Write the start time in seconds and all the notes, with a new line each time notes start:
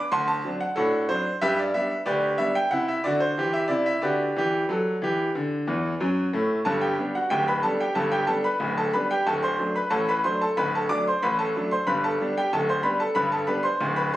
Already playing: D6
0.12 D2 F#5 A5 C6
0.28 A5
0.45 F#3 C4 D4
0.61 F#5
0.76 A2 D4 F#4 A4
1.09 F#3 C4 D4 C5
1.42 G2 G4 B4 E5
1.59 D5
1.74 G3 B3 D4 E5
2.06 D2 G4 B4 D5
2.38 G3 B3 D4 E5
2.55 G5
2.71 C3 E4 F#5
2.88 E5
3.04 D3 F#4 D5
3.20 C5
3.37 E3 G4
3.53 E5
3.68 C3 E4 D5
3.86 E5
4.02 D3 F#4 G4 B4 D5
4.36 E3 G4
4.69 F#3 A4
5.02 E3 G4
5.35 D3
5.67 E2 E3
6.00 F#2 F#3
6.33 A2 A3
6.65 G1 G2 A4 A5
6.81 G4 G5
6.99 G3 B3 D4
7.15 F#4 F#5
7.30 D1 D2 G4 G5
7.48 B4 B5
7.63 G3 B3 D4 A4 A5
7.80 G4 G5
7.95 G1 G2 A4 A5
8.12 G4 G5
8.27 G3 B3 D4 A4 A5
8.44 B4 B5
8.60 D1 D2
8.78 A4 A5
8.93 G3 B3 D4 B4 B5
9.11 G4 G5
9.27 D1 D2 A4 A5
9.43 C5 C6
9.59 F#3 A3 D4
9.76 B4 B5
9.90 A1 A2 A4 A5
10.09 B4 B5
10.24 F#3 A3 D4 C5 C6
10.41 A4 A5
10.57 D1 D2 B4 B5
10.75 A4 A5
10.89 F#3 A3 D4 D5 D6
11.07 C5 C6
11.22 A1 A2 B4 B5
11.39 A4 A5
11.56 F#3 A3 D4
11.71 C5 C6
11.87 G1 G2 B4 B5
12.04 A4 A5
12.21 G3 B3 D4
12.38 G4 G5
12.53 D1 D2 A4 A5
12.69 C5 C6
12.83 G3 B3 D4 B4 B5
13.00 A4 A5
13.15 G1 G2 B4 B5
13.32 A4 A5
13.47 G3 B3 D4 B4 B5
13.63 C5 C6
13.81 D1 D2
13.96 B4 B5